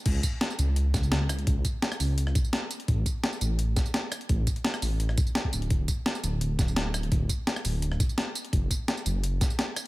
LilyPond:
<<
  \new Staff \with { instrumentName = "Detuned saw bass" } { \clef bass \time 4/4 \key d \lydian \tempo 4 = 170 cis,8 r4 cis,4 cis,4. | cis,8 r4 cis,4 r4. | a,,8 r4 a,,4 r4. | a,,8 r4 a,,4 r4 d,,16 d,,16 |
d,,8 r4 d,,4 d,,4. | d,,8 r4 d,,4 r4. | fis,,8 r4 fis,,4 r4. | }
  \new DrumStaff \with { instrumentName = "Drums" } \drummode { \time 4/4 <cymc hh bd>8 <hh bd tamb>8 <hh sn>16 tamb16 <hh tamb>8 hh8 <hh bd sn tamb>16 tamb16 <hh sn>8 <hh ss tamb>16 hh16 | <hh bd>8 <hh bd tamb>8 <hh sn>16 <ss tamb>16 <hho tamb>8 hh16 ss16 <hh bd tamb>16 tamb16 <hh sn>8 <hh tamb>16 hh16 | <hh bd>8 <hh bd tamb>8 <hh sn>16 tamb16 <hh tamb>8 hh8 <hh bd sn tamb>16 tamb16 <hh sn>8 <hh ss tamb>16 hh16 | <hh bd>8 <hh bd tamb>16 hh16 <hh sn>16 <ss tamb>16 <hho tamb>8 hh16 ss16 <hh bd tamb>16 tamb16 <hh sn>16 bd16 <hh tamb>16 hh16 |
<hh bd>8 <hh bd tamb>8 <hh sn>16 tamb16 <hh tamb>8 hh8 <hh bd sn tamb>16 tamb16 <hh sn>8 <hh ss tamb>16 hh16 | <hh bd>8 <hh bd tamb>8 <hh sn>16 <ss tamb>16 <hho tamb>8 hh16 ss16 <hh bd tamb>16 tamb16 <hh sn>8 <hh tamb>16 hh16 | <hh bd>8 <hh bd tamb>8 <hh sn>16 tamb16 <hh tamb>8 hh8 <hh bd sn tamb>16 tamb16 <hh sn>8 <hh ss tamb>8 | }
>>